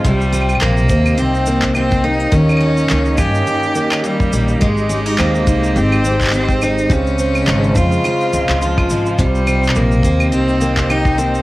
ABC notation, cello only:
X:1
M:4/4
L:1/8
Q:"Swing 16ths" 1/4=105
K:Cphr
V:1 name="Cello"
G,2 B,2 C2 C E | D3 G3 G,2 | A,2 B,2 C2 C E | D3 F3 F,2 |
G,2 B,2 C2 E C |]